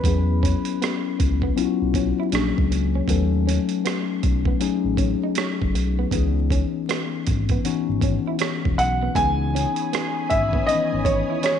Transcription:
0.00 1.15 B4 medium
0.00 kick loud
0.04 0.54 E2 loud
0.04 1.44 F#3 medium
0.04 0.20 B3 medium
0.04 1.44 B3 medium
0.04 1.44 C#4 medium
0.04 1.45 E4 medium
0.04 1.45 G#4 medium
0.04 closed hi-hat medium
0.43 0.58 C#4 medium
0.43 kick medium
0.43 closed hi-hat medium
0.65 closed hi-hat soft
0.82 0.96 B3 medium
0.82 cross-stick medium
0.82 closed hi-hat medium
1.19 1.50 C#2 medium
1.19 muted clean electric guitar stroke soft
1.19 kick medium
1.19 closed hi-hat medium
1.42 1.52 B3 medium
1.42 kick medium
1.56 1.66 B1 soft
1.56 2.31 F#3 medium
1.56 2.32 B3 medium
1.56 2.32 C#4 medium
1.56 2.33 E4 medium
1.56 1.65 F4 medium
1.56 muted clean electric guitar stroke soft
1.56 closed hi-hat medium
1.65 2.36 F#4 medium
1.82 2.12 B1 medium
1.94 2.10 C#4 medium
1.94 kick medium
1.94 closed hi-hat medium
2.20 2.28 E4 medium
2.32 2.52 A#1 medium
2.32 3.02 F#3 medium
2.32 3.02 A#3 medium
2.32 3.02 C#4 medium
2.32 2.48 D4 medium
2.32 3.02 D4 medium
2.32 3.03 G#4 medium
2.32 cross-stick loud
2.32 closed hi-hat medium
2.58 2.69 C#2 medium
2.58 kick medium
2.71 3.01 C#2 medium
2.71 muted clean electric guitar stroke soft
2.71 closed hi-hat medium
2.95 3.04 C#4 medium
3.08 3.58 D#2 loud
3.08 4.47 F#3 medium
3.08 4.47 A3 medium
3.08 3.24 B3 medium
3.08 4.48 C#4 medium
3.08 4.48 D#4 medium
3.08 4.48 A4 medium
3.08 kick medium
3.08 closed hi-hat medium
3.47 3.62 C#4 medium
3.47 closed hi-hat medium
3.69 closed hi-hat soft
3.85 4.00 B3 medium
3.85 cross-stick loud
3.85 closed hi-hat medium
4.23 4.54 B1 medium
4.23 muted clean electric guitar stroke soft
4.23 kick medium
4.23 closed hi-hat medium
4.45 4.55 B3 medium
4.45 kick medium
4.60 4.70 A1 soft
4.60 5.99 F#3 medium
4.60 5.99 A3 medium
4.60 6.00 C#4 medium
4.60 6.00 D#4 medium
4.60 6.00 G#4 loud
4.60 muted clean electric guitar stroke soft
4.60 closed hi-hat medium
4.84 5.15 A1 medium
4.97 5.13 C#4 medium
4.97 kick medium
4.97 closed hi-hat medium
5.24 5.32 D#4 medium
5.35 5.52 C#4 medium
5.35 cross-stick loud
5.35 closed hi-hat medium
5.62 5.72 F#1 medium
5.62 kick medium
5.74 6.05 B1 medium
5.74 muted clean electric guitar stroke soft
5.74 closed hi-hat medium
5.99 6.07 B3 medium
6.11 6.62 C#2 loud
6.11 7.51 E3 medium
6.11 6.28 B3 medium
6.11 7.51 B3 medium
6.11 7.52 C#4 medium
6.11 7.52 D#4 medium
6.11 7.52 G#4 medium
6.11 kick loud
6.11 closed hi-hat medium
6.51 6.66 C#4 medium
6.51 kick medium
6.51 closed hi-hat medium
6.89 7.04 B3 medium
6.89 cross-stick loud
6.89 closed hi-hat medium
7.27 7.57 G#1 medium
7.27 muted clean electric guitar stroke soft
7.27 kick medium
7.27 closed hi-hat medium
7.49 7.59 B3 medium
7.49 kick medium
7.49 closed hi-hat soft
7.64 7.74 G#1 soft
7.64 9.03 E3 medium
7.64 9.03 B3 medium
7.64 9.03 C#4 medium
7.64 9.04 D#4 medium
7.64 9.04 F#4 medium
7.64 muted clean electric guitar stroke soft
7.64 closed hi-hat medium
7.89 8.19 G#1 medium
8.01 8.18 C#4 medium
8.01 kick medium
8.01 closed hi-hat medium
8.28 8.36 E4 medium
8.39 8.56 C#4 medium
8.39 cross-stick loud
8.39 closed hi-hat medium
8.65 8.76 E1 medium
8.65 kick medium
8.78 9.09 B1 medium
8.78 9.17 F#5 medium
8.78 muted clean electric guitar stroke soft
8.78 closed hi-hat medium
9.03 9.11 B3 medium
9.15 9.66 C#2 medium
9.15 10.55 E3 medium
9.15 9.31 B3 medium
9.15 10.55 B3 medium
9.15 10.55 C#4 medium
9.15 10.56 D#4 medium
9.15 10.56 G#4 medium
9.15 11.59 C#5 medium
9.15 11.59 G#5 medium
9.15 10.33 G#5 medium
9.15 11.59 B5 medium
9.15 11.59 D#6 medium
9.15 kick loud
9.15 closed hi-hat medium
9.55 9.70 C#4 medium
9.55 closed hi-hat medium
9.76 closed hi-hat soft
9.93 10.08 B3 medium
9.93 cross-stick loud
9.93 closed hi-hat medium
10.30 10.61 G#1 medium
10.30 10.69 E5 medium
10.30 muted clean electric guitar stroke soft
10.30 kick medium
10.30 closed hi-hat medium
10.53 10.63 B3 medium
10.53 kick medium
10.66 10.78 G#1 soft
10.66 10.76 D#3 medium
10.66 11.59 B3 medium
10.66 11.59 C#4 medium
10.66 11.59 D#4 medium
10.66 11.06 D#5 loud
10.66 muted clean electric guitar stroke soft
10.66 closed hi-hat medium
10.71 11.59 E3 medium
10.71 11.59 B4 medium
10.93 11.23 G#1 medium
11.05 11.21 C#4 medium
11.05 11.42 C#5 medium
11.05 kick medium
11.05 closed hi-hat medium
11.30 11.38 E4 medium
11.43 11.59 C#4 medium
11.43 11.59 C#5 medium
11.43 cross-stick loud
11.43 closed hi-hat medium

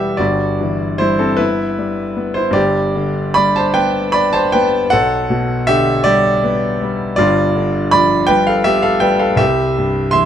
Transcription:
0.00 0.15 E1 medium
0.00 0.15 E2 medium
0.00 0.22 B2 medium
0.00 0.22 E3 medium
0.00 0.22 G3 medium
0.00 0.22 B3 soft
0.00 0.22 G4 medium
0.00 0.21 A4 medium
0.00 0.21 B4 medium
0.00 0.21 E5 loud
0.00 0.21 F#5 medium
0.00 0.21 G5 loud
0.17 2.51 G1 medium
0.17 2.49 G2 medium
0.17 0.96 F#4 medium
0.17 0.99 D5 medium
0.61 1.25 E3 medium
0.98 1.64 G3 medium
0.98 1.18 E4 medium
0.98 1.19 C5 loud
1.19 1.39 C4 medium
1.19 1.40 A4 medium
1.37 2.02 B3 medium
1.37 2.31 E4 medium
1.37 2.35 B4 loud
1.78 2.40 G3 medium
2.17 2.55 B3 medium
2.34 2.54 E4 medium
2.34 2.55 C5 medium
2.51 4.87 G1 medium
2.51 4.85 G2 medium
2.51 3.31 G4 medium
2.51 3.34 D5 loud
2.96 3.60 D3 medium
3.34 3.99 G3 medium
3.34 3.54 D5 medium
3.34 3.55 B5 loud
3.56 3.74 C5 medium
3.56 3.75 A5 loud
3.74 4.38 B3 medium
3.74 4.11 B4 medium
3.74 4.13 G5 loud
4.12 4.77 D4 medium
4.12 4.32 D5 medium
4.12 4.32 B5 loud
4.33 4.52 C5 medium
4.33 4.52 A5 loud
4.52 4.93 B3 medium
4.52 4.89 B4 medium
4.52 4.91 G5 loud
4.90 7.14 B1 medium
4.90 5.63 A4 medium
4.90 5.67 F#5 loud
5.30 5.90 B2 medium
5.67 6.29 D3 medium
5.67 6.03 G4 medium
5.67 6.05 E5 loud
6.04 6.66 G3 medium
6.04 7.14 G4 medium
6.04 7.15 D5 loud
6.44 7.03 B3 medium
6.82 7.19 G3 medium
7.16 9.36 G1 medium
7.16 9.36 G2 medium
7.16 7.88 F4 medium
7.16 7.91 D5 loud
7.56 8.14 D3 medium
7.91 8.51 F3 medium
7.91 8.26 D5 medium
7.91 8.28 B5 loud
8.27 8.88 G3 medium
8.27 8.45 B4 medium
8.27 8.46 G5 loud
8.47 8.65 A4 medium
8.47 8.65 F5 loud
8.64 9.25 B3 medium
8.64 8.82 G4 medium
8.64 8.83 E5 loud
8.82 9.01 A4 medium
8.82 9.02 F5 loud
9.00 9.39 G3 medium
9.00 9.19 B4 medium
9.00 9.20 G5 loud
9.19 9.38 A4 medium
9.19 9.39 F5 medium
9.36 10.25 C2 medium
9.36 10.10 G4 medium
9.36 10.11 E5 loud
9.78 10.25 G2 medium
10.11 10.25 E3 medium
10.11 10.25 E5 medium
10.11 10.25 C6 loud

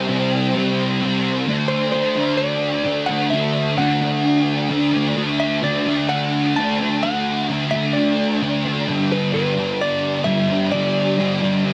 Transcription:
0.00 0.10 C4 loud
0.00 0.97 E5 loud
0.09 0.54 C3 medium
0.09 0.55 G3 medium
0.09 0.56 C4 medium
0.55 1.00 C3 medium
0.55 1.02 G3 loud
0.55 1.04 C4 loud
1.01 1.46 C3 medium
1.01 1.47 G3 medium
1.01 1.47 C4 medium
1.47 1.93 D3 medium
1.47 1.94 A3 medium
1.47 1.95 D4 loud
1.68 1.91 C5 medium
1.92 2.84 D3 medium
1.92 2.18 A3 medium
1.92 2.16 D4 medium
1.92 2.35 C5 medium
2.16 2.86 A3 medium
2.16 2.86 D4 medium
2.37 3.06 D5 medium
2.85 3.31 D3 medium
2.85 3.11 A3 medium
2.85 3.08 D4 medium
3.06 3.34 D4 medium
3.06 3.30 F#5 medium
3.12 3.33 A3 medium
3.30 3.77 D3 medium
3.30 3.79 A3 medium
3.30 3.77 E5 loud
3.35 3.80 D4 loud
3.78 4.70 D3 medium
3.78 4.04 A3 medium
3.78 4.01 D4 loud
3.78 4.67 F#5 medium
4.02 4.70 A3 medium
4.02 4.72 D4 medium
4.70 5.15 D3 medium
4.70 4.95 A3 medium
4.70 4.92 D4 medium
4.92 5.16 A3 medium
4.92 5.17 D4 medium
5.15 5.61 D3 medium
5.15 5.63 A3 medium
5.15 5.64 D4 loud
5.40 5.63 E5 medium
5.62 6.55 D3 medium
5.62 5.88 A3 loud
5.62 5.85 D4 loud
5.62 6.09 D5 medium
5.86 6.56 A3 medium
5.86 6.59 D4 medium
6.09 6.56 F#5 medium
6.56 7.02 D3 medium
6.56 6.82 A3 medium
6.56 6.80 D4 medium
6.56 7.02 A5 loud
6.80 7.03 A3 medium
6.80 7.05 D4 medium
7.03 7.48 D3 medium
7.03 7.50 A3 medium
7.03 7.52 D4 loud
7.03 7.45 F#5 medium
7.49 7.95 D3 medium
7.49 7.75 A3 medium
7.49 7.72 D4 loud
7.71 8.43 D4 medium
7.71 7.95 E5 medium
7.76 8.42 A3 medium
7.93 8.37 D5 medium
8.42 8.86 D3 medium
8.42 8.66 A3 medium
8.42 8.65 D4 medium
8.65 8.87 A3 medium
8.65 11.73 D4 medium
8.88 9.33 G2 medium
8.88 9.33 D3 medium
8.88 9.35 G3 loud
9.12 9.33 B4 medium
9.33 10.24 G2 medium
9.33 9.58 D3 medium
9.33 9.55 G3 loud
9.33 9.81 B4 medium
9.56 10.25 D3 medium
9.56 10.27 G3 medium
9.81 10.24 D5 loud
10.24 10.71 G2 medium
10.24 10.50 D3 medium
10.24 10.48 G3 medium
10.24 10.71 E5 loud
10.48 10.72 D3 medium
10.48 10.74 G3 medium
10.72 11.16 G2 medium
10.72 11.18 D3 loud
10.72 11.19 G3 loud
10.72 11.60 D5 medium
11.17 11.63 G2 medium
11.17 11.43 D3 loud
11.17 11.42 G3 medium
11.42 11.73 D3 medium
11.42 11.73 G3 medium

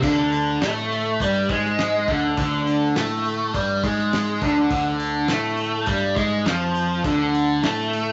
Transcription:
0.02 0.58 D2 medium
0.02 0.60 D3 loud
0.02 kick loud
0.02 open hi-hat medium
0.02 crash medium
0.33 open hi-hat medium
0.61 1.16 A2 medium
0.61 1.19 A3 medium
0.61 snare loud
0.61 open hi-hat medium
0.92 open hi-hat medium
1.20 1.48 G2 medium
1.20 1.49 G3 medium
1.20 kick loud
1.20 open hi-hat medium
1.49 2.04 G#2 medium
1.49 2.08 G#3 loud
1.49 kick loud
1.49 snare soft
1.49 open hi-hat medium
1.65 snare soft
1.79 snare loud
1.79 open hi-hat medium
2.08 2.36 D2 medium
2.08 2.37 D3 medium
2.08 kick loud
2.08 open hi-hat medium
2.37 2.92 D2 loud
2.37 2.96 D3 loud
2.37 kick loud
2.37 open hi-hat medium
2.67 open hi-hat medium
2.96 3.51 A2 loud
2.96 3.54 A3 loud
2.96 snare loud
2.96 open hi-hat medium
3.25 open hi-hat medium
3.54 3.82 G2 medium
3.54 3.83 G3 loud
3.54 kick loud
3.54 open hi-hat medium
3.84 4.39 G#2 loud
3.84 4.42 G#3 loud
3.84 kick loud
3.84 open hi-hat medium
3.99 snare soft
4.13 snare loud
4.13 open hi-hat medium
4.42 4.70 D2 loud
4.42 4.70 D3 medium
4.42 kick loud
4.42 open hi-hat medium
4.71 5.26 D2 loud
4.71 5.29 D3 loud
4.71 kick loud
4.71 open hi-hat medium
5.00 open hi-hat medium
5.28 5.85 A2 medium
5.28 5.87 A3 loud
5.28 snare loud
5.28 open hi-hat medium
5.57 open hi-hat soft
5.86 6.15 G2 medium
5.86 6.16 G3 medium
5.86 kick loud
5.86 open hi-hat medium
6.16 6.44 G#2 medium
6.16 6.46 G#3 loud
6.16 kick loud
6.16 snare soft
6.16 open hi-hat medium
6.46 7.01 F2 medium
6.46 7.04 F3 medium
6.46 snare loud
6.46 open hi-hat medium
6.75 open hi-hat medium
7.04 7.59 D2 medium
7.04 7.63 D3 loud
7.04 kick loud
7.04 open hi-hat medium
7.35 open hi-hat medium
7.63 8.12 A2 medium
7.63 8.12 A3 loud
7.63 snare loud
7.63 open hi-hat medium
7.93 open hi-hat medium

